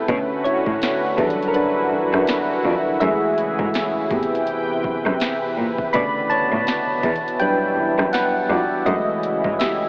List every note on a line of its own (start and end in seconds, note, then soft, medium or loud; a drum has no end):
0.00 1.15 A3 medium
0.00 0.11 B3 medium
0.00 0.10 G4 medium
0.00 2.97 B4 medium
0.08 0.17 B2 loud
0.08 2.98 D3 medium
0.08 0.59 D3 medium
0.08 0.59 A3 medium
0.08 1.17 C#4 medium
0.08 0.60 C#4 medium
0.08 1.17 F#4 medium
0.08 kick loud
0.08 closed hi-hat medium
0.44 1.15 E4 medium
0.44 1.20 C#5 loud
0.44 closed hi-hat medium
0.66 0.75 A2 loud
0.66 kick loud
0.82 snare loud
0.82 closed hi-hat medium
1.17 1.26 E2 loud
1.17 2.99 E3 medium
1.17 2.24 F#3 medium
1.17 2.24 G3 medium
1.17 1.47 D4 medium
1.17 5.90 E4 medium
1.17 4.08 F#4 medium
1.17 1.49 A4 medium
1.17 kick loud
1.17 closed hi-hat medium
1.30 closed hi-hat medium
1.43 closed hi-hat medium
1.48 1.54 A#4 medium
1.54 2.98 D4 medium
1.54 3.05 B4 loud
1.54 closed hi-hat medium
1.92 1.98 F#2 soft
2.13 2.21 F#2 loud
2.13 cross-stick loud
2.27 snare loud
2.27 closed hi-hat medium
2.65 2.73 F2 loud
3.00 3.10 F#2 loud
3.00 4.10 C#3 medium
3.00 6.99 E3 medium
3.00 4.07 E3 medium
3.00 4.07 G#3 medium
3.00 4.07 A3 medium
3.00 4.10 G#4 medium
3.00 5.17 G#4 medium
3.00 5.16 E5 loud
3.00 closed hi-hat medium
3.38 closed hi-hat medium
3.59 3.67 G#2 loud
3.59 kick loud
3.74 snare loud
3.74 closed hi-hat medium
4.11 4.19 A2 medium
4.11 5.16 C3 medium
4.11 5.92 C3 medium
4.11 5.17 B3 medium
4.11 5.17 G4 medium
4.11 8.83 B4 medium
4.11 5.92 G5 medium
4.11 kick loud
4.11 closed hi-hat medium
4.23 closed hi-hat medium
4.35 closed hi-hat medium
4.47 closed hi-hat medium
4.84 4.91 F#2 soft
4.84 kick loud
5.05 5.13 F#2 medium
5.05 cross-stick medium
5.20 snare loud
5.20 closed hi-hat medium
5.57 5.65 A#2 medium
5.78 kick medium
5.93 8.83 B2 medium
5.93 6.02 B2 loud
5.93 7.00 C#3 medium
5.93 6.99 D3 medium
5.93 7.00 A3 medium
5.93 7.02 B3 medium
5.93 6.28 D5 medium
5.93 6.31 B5 loud
5.93 closed hi-hat medium
6.30 7.37 C#5 medium
6.30 7.36 A5 loud
6.30 closed hi-hat medium
6.52 6.60 A2 loud
6.67 snare loud
6.67 closed hi-hat medium
7.03 7.12 E2 loud
7.03 8.85 E3 medium
7.03 9.89 E4 medium
7.03 kick loud
7.03 closed hi-hat medium
7.16 closed hi-hat medium
7.28 closed hi-hat medium
7.40 7.91 F#3 medium
7.40 7.91 G3 medium
7.40 7.92 D4 medium
7.40 8.10 B4 medium
7.40 8.15 G5 loud
7.40 closed hi-hat medium
7.77 7.84 F#2 soft
7.98 8.06 F#2 loud
7.98 cross-stick loud
8.13 8.48 B4 medium
8.13 8.51 F#5 medium
8.13 snare loud
8.13 closed hi-hat medium
8.49 8.58 F2 loud
8.49 8.65 F#4 medium
8.49 8.63 D5 medium
8.86 8.94 F#2 loud
8.86 9.89 C#3 medium
8.86 9.89 E3 medium
8.86 9.89 G#3 medium
8.86 9.89 A3 medium
8.86 9.56 F#4 medium
8.86 9.61 D#5 loud
8.86 closed hi-hat medium
9.23 closed hi-hat medium
9.44 9.53 G#2 loud
9.44 kick loud
9.59 9.89 G4 medium
9.59 9.89 E5 medium
9.59 snare loud
9.59 closed hi-hat medium